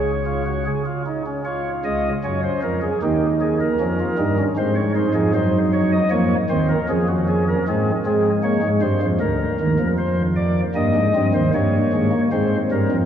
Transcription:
Already playing: C#2 C#3 G#4 C#5
0.26 F4
0.46 F#4
0.65 G#4
0.85 F4
1.06 D#4
1.26 C#4
1.45 F4 C#5
1.85 C#2 C#3 D#5
2.24 F#2 F#3 C#4 C#5
2.43 C5
2.62 F2 F3 A#4
2.82 G#4
3.02 D#2 D#3 D#4 G4
3.40 G#4
3.60 A#4
3.80 F2 F3 C#4
3.99 F4
4.18 G2 G3 D#4
4.38 C#4
4.57 G#2 G#3 C4 C5
4.76 C#5
4.95 D#4 C5
5.14 F2 F3 G#4
5.34 F#2 F#3 C5
5.73 C#5
5.92 D#5
6.10 F2 F3 A#3 C#5
6.49 D#2 D#3 C4 C5
6.69 A#4
6.89 F2 F3 C#4 G#4
7.08 F#4
7.28 G#4
7.48 A#4
7.68 G#2 G#3 C4 G#4
8.06 G#3 C4 G#4
8.44 A#3 C#5
8.63 G#2 G#3
8.81 G2 G3 C5
9.02 F2 F3
9.20 D2 D3 A#4
9.60 D#2 D#3
9.79 F2 F3
9.98 C5
10.36 D5
10.75 G2 G3 A#3 D#5
10.95 G#2 G#3
11.15 G2 G3 C4
11.34 D#2 D#3 C5
11.54 G2 G3 A#3 C#5
11.93 G#2 G#3
12.12 A#3
12.32 G#2 G#3 C4 C5
12.71 G2 G3 A#4
12.91 F2 F3

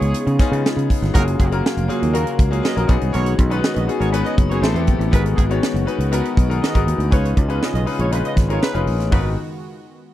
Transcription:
Already playing: C#3 G#3 B3 C#4 D#4 F4 G#4 C#5
0.01 C#2, closed hi-hat
0.14 closed hi-hat
0.27 C#3, closed hi-hat
0.39 B3 C#4 D#4 F4 G#4, kick, snare, closed hi-hat
0.52 C#3, closed hi-hat
0.66 snare
0.77 C#3, closed hi-hat
0.90 kick, open hi-hat
1.02 G1, snare, closed hi-hat
1.13 F#1 C#3 F#3 A#3 C#4 F4 F#4 G#4 A#4, kick, closed hi-hat
1.27 closed hi-hat
1.38 F#1 C#4 F4 G#4, kick, closed hi-hat
1.52 A#3 C#4 F4 F#4 A#4, closed hi-hat
1.66 snare
1.77 F1, closed hi-hat
1.88 A#3 C#4 F4 F#4 G#4, closed hi-hat
2.02 D#2, closed hi-hat
2.13 A#3 C#4 F4 F#4 A#4, closed hi-hat
2.27 closed hi-hat
2.39 C#2, kick, closed hi-hat
2.51 A#3 C#4 F4 F#4 G#4, closed hi-hat
2.63 G#4 B4 D#5, snare
2.75 A#1 A#3 C#4 F4 F#4 A#4, closed hi-hat
2.87 B1 D#3 G#3 B3 C#4 D#4 F#4 G#4, kick, closed hi-hat
3.01 C2, closed hi-hat
3.12 B1 F#4 A#4 C#5, closed hi-hat
3.26 closed hi-hat
3.38 B1, kick, closed hi-hat
3.49 B3 C#4 D#4 F#4 G#4 B4, closed hi-hat
3.63 G#4 B4 D#5, snare
3.73 A#1 G#4 B4 D#5, closed hi-hat
3.87 B3 C#4 D#4 F#4 G#4, closed hi-hat
3.99 G#1 F#4 A#4 C#5, closed hi-hat
4.12 B3 C#4 D#4 F#4 G#4 B4, closed hi-hat
4.25 G#4 B4 D#5, closed hi-hat
4.38 F#1, kick, closed hi-hat
4.49 B3 C#4 D#4 F#4 G#4 A#4 C#5, closed hi-hat
4.61 A1 E3 A3 B3 C4 E4 G4 A4 C5, snare
4.74 E2 B3 C4 E4 G4 A4, closed hi-hat
4.87 A#1, kick, closed hi-hat
4.99 A1, closed hi-hat
5.11 G#1 D#3 G#3 B3 D#4 F#4 G#4 A#4 B4, kick, closed hi-hat
5.26 closed hi-hat
5.35 G#1 B3 D#4 G#4, kick, closed hi-hat
5.50 B3 D#4 F#4 G#4 C#5, closed hi-hat
5.63 snare
5.74 F#1, closed hi-hat
5.86 B3 D#4 F#4 G#4 B4, closed hi-hat
5.98 C#2, closed hi-hat
6.11 B3 D#4 F#4 G#4 A#4 B4, closed hi-hat
6.25 closed hi-hat
6.37 B1, kick, closed hi-hat
6.49 B3 D#4 F#4 G#4 A#4, closed hi-hat
6.61 G#4 B4 D#5, snare
6.73 G#1 B3 D#4 F#4 G#4 A#4, kick, closed hi-hat
6.86 D#2, closed hi-hat
6.98 D2, closed hi-hat
7.11 C#2 C#3 C#4 D#4 F4 G#4 B4 C#5, kick, closed hi-hat
7.25 closed hi-hat
7.37 C#2, kick, closed hi-hat
7.49 C#4 D#4 F4 G#4 B4, closed hi-hat
7.62 G#4 B4 D#5, snare
7.73 B1 G#4 B4 D#5, closed hi-hat
7.85 C#4 D#4 F4 G#4 B4, open hi-hat
7.98 A#1 F4 G#4 C#5, closed hi-hat
8.11 C#4 D#4 F4 G#4 B4, closed hi-hat
8.25 G#4 B4 D#5, closed hi-hat
8.36 G#1, kick, snare, closed hi-hat
8.48 C#4 D#4 F4 G#4 A#4 C#5, closed hi-hat
8.62 F4 G#4 B4, snare
8.74 F1 C#4 D#4 F4 G#4 B4, closed hi-hat
8.87 A#1, open hi-hat
8.99 A1, snare, closed hi-hat
9.11 G#1 D#3 G#3 B3 D#4 F#4 G#4 A#4 B4, kick, floor tom, open hi-hat

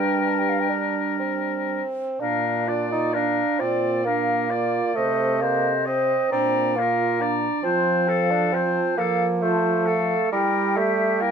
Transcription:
Already playing: G2 G3 D4 A#4 G5
0.28 A5
0.39 G5
0.49 F5
0.60 G5
0.69 D4
1.19 C4
2.19 A#2 D4 A#4 F5
2.68 F4 D5
2.92 D#4
3.14 D4 A#4 F5
3.59 A#2 C4 F4 D5
4.05 A#3 D4 A#4 F5
4.49 F4 D5
4.94 C3 A3 C5 D#5
5.41 A#3 A4 C5 D#5
5.86 C4 C5 D#5
6.31 A#2 C4 D4 D5 A#5
6.76 A#3 F4 A#4 F5
7.20 D4 D5 A#5
7.63 F3 C4 F4 C5 A5
8.07 A4 F5
8.31 D4
8.53 C4 F4 C5 A5
8.97 F3 A#3 A4 F5
9.41 A3 F4 C5 A5
9.86 A4 F5
10.32 G3 E4 A#4 G5
10.76 A3 G4 E5
11.21 A#3 E4 A#4 G5

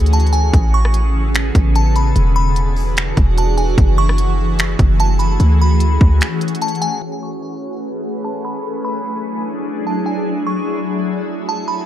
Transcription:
Already playing: D2 E3 C#4 F#4 G#4
0.06 closed hi-hat
0.13 A5, closed hi-hat
0.20 closed hi-hat
0.27 closed hi-hat
0.33 G#5, closed hi-hat
0.53 A1 C#3 B3 A4, kick, closed hi-hat
0.74 C#6
0.85 cross-stick
0.94 closed hi-hat
1.35 finger snap, closed hi-hat
1.55 A1, kick, closed hi-hat
1.75 A5, closed hi-hat
1.96 B5, closed hi-hat
2.15 E1 E3 D4 F#4, closed hi-hat
2.36 B5
2.56 closed hi-hat
2.76 open hi-hat
2.97 finger snap, closed hi-hat
3.17 E1, kick, closed hi-hat
3.38 A5, closed hi-hat
3.58 G#5, closed hi-hat
3.78 F#1 A3 F#4 G#4, kick, closed hi-hat
3.98 C#6
4.09 cross-stick
4.18 closed hi-hat
4.59 finger snap, closed hi-hat
4.79 F#1, kick, closed hi-hat
5.00 A5, closed hi-hat
5.19 B5, closed hi-hat
5.40 D2 C#4, closed hi-hat
5.62 B5
5.80 closed hi-hat
6.01 D2, kick
6.21 finger snap, closed hi-hat
6.41 closed hi-hat
6.48 closed hi-hat
6.55 closed hi-hat
6.61 A5, closed hi-hat
6.68 closed hi-hat
6.75 closed hi-hat
6.82 G#5, closed hi-hat
7.02 A3 C#4 G#4 B4
7.23 C#6
8.24 A5
8.45 B5
8.64 F#3 D4 E4
8.85 B5
9.87 A5
10.06 G#5
10.26 A3
10.47 C#6
11.49 A5
11.68 B5

